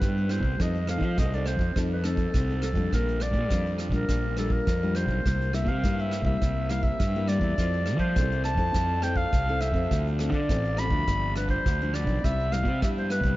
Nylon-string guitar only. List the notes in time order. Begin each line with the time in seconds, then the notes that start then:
Already playing: G3 B3 E4
0.02 G2
0.30 G3 B3 E4
0.60 F3 C4 D#4 A4
0.88 C4 D#4 A4
1.18 C3
1.34 C4 D#4 A4
1.76 F3 C4 D#4 A4
2.04 C4 D#4 A4
2.35 C3
2.50 C4 D#4 A4
2.76 G3 D4 F4
2.93 A#2
3.51 F3 G3 D4 F4
3.92 G3 D4 F4
4.09 A#2
4.37 G3 D4 F4
4.67 F3
4.82 G3 D4 F4
5.26 C3 G3 A#3 E4
5.53 G3 A#3 E4
5.83 G2 G3 A#3 E4
6.25 G3 A#3 E4
6.42 C3
6.70 G3 A#3 E4
7.00 G2
7.16 G3 A#3 E4
7.58 F3 C4 E4 A4
8.17 C3 C4 E4 A4
8.58 C4 E4 A4
8.75 F3
9.03 C4 E4 A4
9.33 C3
9.49 C4 E4 A4
9.74 C4 F4 A4
9.92 D3
10.20 C4 F4 A4
10.50 A2 C4 F4 A4
10.78 C4 F4 A4
10.91 F3 B3 D4
11.08 G2
11.36 F3 B3 D4
11.66 D3
11.81 F3 B3 D4
12.24 C3 G3 B3 E4
12.52 G3 B3 E4
12.82 G2 G3 B3 E4
13.24 G3 B3 E4